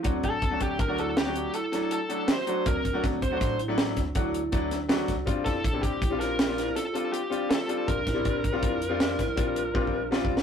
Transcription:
<<
  \new Staff \with { instrumentName = "Lead electric guitar" } { \time 7/4 \key d \minor \tempo 4 = 161 r8 a'4 g'8 bes'8 a'8 g'4 a'4 a'4 c''4 | bes'4 r8 c''4 r1 r8 | r8 a'4 g'4 bes'4. a'4 g'4 a'4 | bes'1. r4 | }
  \new Staff \with { instrumentName = "Vibraphone" } { \time 7/4 \key d \minor c'8 d'8 c'4 d'8 e'8 c'8 d'8 e'8 e'4 d'8 fis'8 fis'8 | c'8 d'8 c'4 d'8 e'8 c'8 d'8 e'8 e'4 d'8 fis'8 fis'8 | d'8 e'8 d'4 e'8 f'8 d'8 e'8 f'8 f'4 d'8 f'8 f'8 | d'8 e'8 d'4 e'8 f'8 d'8 e'8 f'8 f'4 d'8 f'8 f'8 | }
  \new Staff \with { instrumentName = "Grand piano" } { \time 7/4 \key d \minor <fis a d' fis'>8. r8 <fis a d' fis'>8. r16 <fis a d' fis'>8. r16 <fis a d' fis'>8. r8 <fis a d' a'>8. r16 <fis a d' e'>8. r16 <fis a d' fis'>8~ | <fis a d' fis'>16 r8 <fis a d' fis'>8. r16 <fis a d' fis'>8. r16 <fis a d' e'>8. r8 <fis a d' fis'>8. r16 <fis a d' e'>8. r16 <fis a d' fis'>8. r16 | <g c' d' f'>8. r8 <g c' d' e'>8. r16 <g c' d' f'>8. r16 <g c' d' f'>8. r8 <g c' d' f'>8. r16 <g c' d' f'>8. r16 <g c' d' f'>8~ | <g c' d' f'>16 r8 <g c' d' e'>8. r16 <g c' d' f'>8. r16 <g c' d' f'>8. r8 <g c' d' f'>8. r16 <g c' d' f'>8. r16 <g c' d' f'>8. r16 | }
  \new Staff \with { instrumentName = "Upright bass" } { \clef bass \time 7/4 \key d \minor d,8 a,,8 d,8 d,8 d,2 r2. | d,8 d,8 d,8 d,8 a,,4. d,8 d,4 d,4. c,8 | bes,,8 f,8 bes,,8 bes,,8 bes,,2 r2. | bes,,8 bes,,8 bes,,8 bes,,8 f,4. bes,,8 bes,,4 bes,,4. bes,,8 | }
  \new DrumStaff \with { instrumentName = "Drums" } \drummode { \time 7/4 <hh bd>8 <hh bd>8 <hh bd>8 <hh bd>8 <hh bd>8 hh8 <hh sn>8 hh8 hh8 <hh sn>8 hh8 hh8 <hh sn>8 hh8 | <hh bd>8 <hh bd>8 <hh bd sn>8 <hh bd>8 <hh bd sn>8 hh8 <hh sn>8 <hh bd sn>8 <hh bd>8 hh8 <hh bd>8 <hh sn>8 <hh sn>8 <hh bd sn>8 | <hh bd>8 <hh bd sn>8 <hh bd>8 <hh bd>8 <hh bd>8 <hh sn>8 <hh sn>8 <hh sn>8 <hh sn>8 hh8 hh8 hh8 <hh sn>8 hh8 | <hh bd>8 <hh bd sn>8 <hh bd>8 <hh bd>8 <hh bd>8 hh8 <hh sn>8 <hh bd sn>8 <hh bd>8 hh8 \tuplet 3/2 { bd8 bd8 r8 sn8 bd8 sn8 } | }
>>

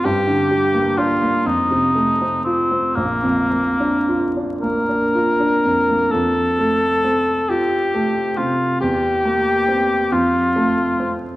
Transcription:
<<
  \new Staff \with { instrumentName = "Cor anglais" } { \time 6/8 \key bes \major \tempo 4. = 43 g'4 f'8 ees'4 c'8 | bes4. bes'4. | \key f \major a'4. g'4 f'8 | g'4. f'4 r8 | }
  \new Staff \with { instrumentName = "Grand piano" } { \time 6/8 \key bes \major g,16 d16 g16 bes16 d'16 bes16 f,16 c16 a16 c'16 f'16 c'16 | bes,,16 f,16 bes16 d'16 f'16 d'16 bes16 d'16 f'16 d'16 f,16 bes16 | \key f \major f,8 a8 c'8 f'8 a8 c8 | e,8 bes8 c'8 f,8 a8 c'8 | }
>>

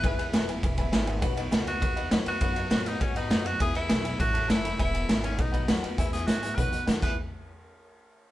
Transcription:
<<
  \new Staff \with { instrumentName = "Upright piano" } { \time 4/4 \key e \major \tempo 4 = 202 <b' e'' gis''>8 <b' e'' gis''>8 <b' e'' gis''>8 <b' e'' gis''>8 <b' e'' gis''>8 <b' e'' gis''>8 <b' e'' gis''>8 <b' e'' gis''>8 | <b' dis'' fis''>8 <b' dis'' fis''>8 <b' dis'' gis''>8 <b' dis'' fis''>8 <b' dis'' fis''>8 <b' dis'' fis''>8 <b' dis'' fis''>8 <b' dis'' fis''>8 | <b' dis'' fis''>8 <b' dis'' fis''>8 <b' dis'' fis''>8 <b' dis'' fis''>8 <b' dis'' fis''>8 <b' dis'' fis''>8 <b' dis'' fis''>8 <dis'' fis''>8 | <b' e'' gis''>8 <b' e'' gis''>8 <b' e'' gis''>8 <b' e'' gis''>8 <cis'' e'' a''>8 <cis'' e'' a''>8 <cis'' e'' a''>8 <cis'' e'' b''>8 |
<b' e'' gis''>8 <b' e'' gis''>8 <b' e'' gis''>8 <b' e'' gis''>8 <b' dis'' fis''>8 <b' dis'' fis''>8 <b' dis'' fis''>8 <b' dis'' fis''>8 | <b' e'' gis''>8 <b' e'' gis''>8 <b' e'' gis''>8 <b' e'' gis''>8 <b' dis'' fis''>8 <b' dis'' fis''>8 <b' dis'' fis''>8 <b' e'' gis''>8 | r1 | }
  \new Staff \with { instrumentName = "Tenor saxophone" } { \time 4/4 \key e \major b'4. r2 r8 | r4. fis'4. r8 fis'8~ | fis'4. dis'8 cis'8 dis'4 fis'8 | gis'8 e'4. fis'4 e'4 |
e'4. cis'8 dis'4 r4 | e'8 gis'8 fis'4 b'4 r8 b'8 | r1 | }
  \new Staff \with { instrumentName = "Steel-string acoustic guitar" } { \time 4/4 \key e \major <e, b, e gis b e'>8 <e gis b e'>8 <e, b, e gis b e'>8 <e gis b e'>8 <e gis b e'>8 <e gis b e'>8 <e, b, e gis b e'>8 <e gis b e'>8 | <b, fis b dis' fis'>8 <b dis' fis'>8 <b, fis b dis' fis'>8 <b dis' fis'>8 <fis b dis' fis'>8 <b dis' fis'>8 <b, fis b dis' fis'>8 <b dis' fis'>8 | <b, fis b dis' fis'>8 <b dis' fis'>8 <b, fis b dis' fis'>8 <b dis' fis'>8 <fis b dis' fis'>8 <b dis' fis'>8 <b, fis b dis' fis'>8 <b dis' fis'>8 | <e, b, e gis b e'>8 <e gis b e'>8 <e, b, e gis b e'>8 <e gis b e'>8 <e a cis' e'>8 <a cis' e'>8 <a, e a cis' e'>8 <a cis' e'>8 |
<e, b, e gis b e'>8 <e gis b e'>8 <e, b, e gis b e'>8 <e gis b e'>8 <fis b dis' fis'>8 <b dis' fis'>8 <b, fis b dis' fis'>8 <b dis' fis'>8 | <e, b, e gis b e'>8 <e gis b e'>8 <e gis b e'>8 <e gis b e'>8 <b, fis b dis' fis'>8 <b dis' fis'>8 <fis b dis' fis'>8 <e, b, e b e' gis'>8 | r1 | }
  \new Staff \with { instrumentName = "Upright bass" } { \clef bass \time 4/4 \key e \major gis,,8 r8 fis,,4 e,,4 gis,,4 | b,,4 cis,4 dis,4 e,8 r8 | fis,4 a,4 gis,4 fis,4 | e,4 b,,4 a,,4 fis,,4 |
e,,4 gis,,4 b,,4 dis,8 r8 | e,4 gis,4 b,8 r8 dis8 e,8 | r1 | }
  \new DrumStaff \with { instrumentName = "Drums" } \drummode { \time 4/4 <bd cymr>8 cymr8 <cymr sn>8 cymr8 <bd cymr>8 <bd cymr>8 <cymr sn>8 cymr8 | <bd cymr>8 cymr8 <cymr sn>8 cymr8 <bd cymr>8 cymr8 <cymr sn>8 cymr8 | <bd cymr>8 cymr8 <cymr sn>8 <cymr sn>8 <bd cymr>8 cymr8 <cymr sn>8 cymr8 | <bd cymr>8 cymr8 <cymr sn>8 <cymr sn>8 <bd cymr>8 cymr8 <cymr sn>8 cymr8 |
<bd cymr>8 cymr8 <cymr sn>8 cymr8 <bd cymr>8 <bd cymr>8 <cymr sn>8 cymr8 | <hh bd>8 <hh sn>8 <hh sn>8 hh8 <hh bd>8 hh8 <hh sn>8 <cymc bd>8 | r4 r4 r4 r4 | }
>>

